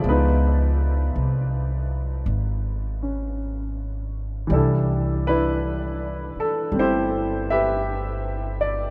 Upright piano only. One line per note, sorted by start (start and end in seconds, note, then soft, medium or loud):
0.00 4.47 F3 soft
0.00 4.49 G#3 soft
0.05 4.50 B3 soft
0.05 3.37 B4 medium
0.09 4.52 D#4 soft
0.09 3.38 F4 soft
3.02 4.51 C#4 soft
4.47 8.90 E3 soft
4.47 6.70 G3 soft
4.52 5.28 D4 soft
4.52 5.28 E4 soft
4.52 5.22 A4 medium
5.27 7.45 D4 soft
5.27 6.78 E4 medium
5.27 6.33 B4 medium
6.40 6.72 A4 medium
6.72 8.90 G3 soft
6.72 8.90 A3 soft
6.72 8.90 C4 soft
6.79 8.90 E4 medium
6.79 7.50 G4 medium
6.79 7.46 C5 medium
7.50 8.90 G4 medium
7.50 8.90 B4 medium
7.50 8.63 E5 medium
8.61 8.90 D5 medium